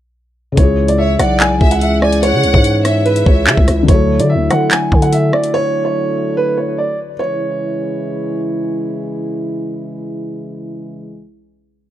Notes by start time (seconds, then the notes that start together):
0.52 C#3 G#3
0.57 C#2 C#3 E3 G#3 E4 C#5, kick, closed hi-hat
0.63 G#4
0.88 D5, closed hi-hat
0.98 C#5 E5
1.19 B1 D5 F#5, cross-stick, closed hi-hat
1.40 G#5, clap, closed hi-hat
1.61 C#2 E5, kick
1.71 F#5, closed hi-hat
1.81 E5 F#5, closed hi-hat
2.02 D5 G#5, cross-stick
2.12 closed hi-hat
2.23 C#5 F#5, closed hi-hat
2.33 C#3
2.44 C#2, closed hi-hat
2.54 G#2 C#5, kick
2.64 closed hi-hat
2.85 E5, cross-stick, closed hi-hat
3.05 B4, closed hi-hat
3.16 closed hi-hat
3.26 C#2 C#5, kick
3.47 C#3 E5, clap
3.57 C#2, kick
3.68 C#2, cross-stick, closed hi-hat
3.83 D3 F#3
3.88 D2 D3 F#3 A3 E4 C#5, kick, closed hi-hat
3.94 A4
4.20 D3 D5, closed hi-hat
4.29 E5
4.35 D2
4.51 D3 F#5, cross-stick, closed hi-hat
4.71 G#5, clap, closed hi-hat
4.92 D3, kick
5.02 F#5, closed hi-hat
5.13 E5, closed hi-hat
5.33 D5, cross-stick
5.44 closed hi-hat
5.54 C#5
5.85 C#5
6.37 B4
6.57 C#5
6.78 D5
7.19 C#3 E3 G#3 E4 C#5